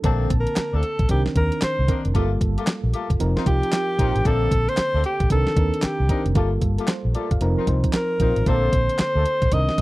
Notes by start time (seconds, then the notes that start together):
0.04 A#1 D3 A3 A#3 C4 D4 A4 A5, kick, closed hi-hat
0.30 A#1, kick, closed hi-hat
0.40 A#4
0.47 closed hi-hat
0.56 muted fingered electric bass stroke, snare, clap, closed hi-hat
0.73 D2 A3 A#3 C4 D4 A4
0.83 closed hi-hat
0.99 A#1, kick, closed hi-hat
1.09 C2 D#3 C4 D4 G4 A#4, kick, closed hi-hat
1.26 muted fingered electric bass stroke, snare
1.36 D#2 D#3 C4 D4 A#4, kick, closed hi-hat
1.52 closed hi-hat
1.62 C5, muted fingered electric bass stroke, snare, clap, closed hi-hat
1.79 C2
1.88 D#3 A#3 C4 D4 D#4 A#4, kick, closed hi-hat
2.05 F1, closed hi-hat
2.14 G1 G3 A3 A#3 F4 G4 A4, kick, closed hi-hat
2.41 G1, kick, closed hi-hat
2.57 A3 A#3 F4 G4 A4, closed hi-hat
2.67 snare, clap, closed hi-hat
2.84 A#1
2.94 A3 A#3 F4 G4 A4, closed hi-hat
3.10 G1, kick, closed hi-hat
3.19 F1 F3 C4 D#4 A#4, closed hi-hat
3.36 A#3 C4 D#4 F4 A#4, muted fingered electric bass stroke, snare
3.46 C2 F3 C4 D#4 F4 G4, kick, closed hi-hat
3.63 closed hi-hat
3.72 snare, clap, closed hi-hat
3.98 A#1 F3 A#3 C4 D#4 F4 A#4 C5, kick, closed hi-hat
4.16 A1, closed hi-hat
4.25 A#1 D3 A3 A#3 C4 D4 A4, kick, closed hi-hat
4.51 A#1, kick, closed hi-hat
4.69 C5, closed hi-hat
4.77 muted fingered electric bass stroke, snare, clap, closed hi-hat
4.94 D2 A3 A#3 C4 D4 A4
5.04 G4, closed hi-hat
5.20 A#1, kick, closed hi-hat
5.30 C2 D#3 C4 D4 A4 A#4, kick, closed hi-hat
5.47 snare
5.57 D#2 D#3 C4 D4 A#4, kick, closed hi-hat
5.74 closed hi-hat
5.82 G4, muted fingered electric bass stroke, snare, clap, closed hi-hat
6.00 C2
6.09 D#3 A#3 C4 D4 D#4 A#4, kick, closed hi-hat
6.26 F1, closed hi-hat
6.35 G1 G3 A3 A#3 F4 G4 A4, kick, closed hi-hat
6.61 G1, kick, closed hi-hat
6.78 A3 A#3 F4 G4 A4, closed hi-hat
6.87 C5, snare, clap, closed hi-hat
7.05 A#1
7.14 A3 A#3 F4 G4 A4 D5, closed hi-hat
7.31 G1 A4 F5, kick, closed hi-hat
7.41 F1 F3 C4 D#4 A#4, closed hi-hat
7.57 A#3 C4 D#4 F4 A#4
7.67 C2 F3 C4 D#4 C5, kick, closed hi-hat
7.84 kick, closed hi-hat
7.93 A#4, snare, clap, closed hi-hat
8.20 A#1 F3 A#3 C4 D#4 F4 A#4, kick, closed hi-hat
8.36 A1, closed hi-hat
8.46 A#1 D3 A3 A#3 C4 D4 A4 C5, kick, closed hi-hat
8.73 A#1, kick, closed hi-hat
8.89 closed hi-hat
8.99 C5, muted fingered electric bass stroke, snare, clap, closed hi-hat
9.15 D2 A3 A#3 C4 D4 A4
9.26 closed hi-hat
9.42 A#1, kick, closed hi-hat
9.52 C2 D#3 C4 D4 A#4 D#5, kick, closed hi-hat
9.69 snare
9.78 D#2, kick, closed hi-hat